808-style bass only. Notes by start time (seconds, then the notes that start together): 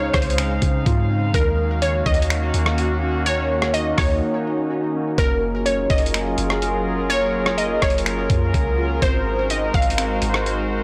Already playing: C#2
0.14 C#2
0.62 C#3
0.86 G#2
1.34 D#2
2.06 D#2
2.54 D#2
3.98 D#2
5.18 F#1
5.90 F#1
6.38 F#1
7.82 F#1
8.30 F#2
8.54 C#2
9.02 G#1
9.74 G#1
10.22 G#1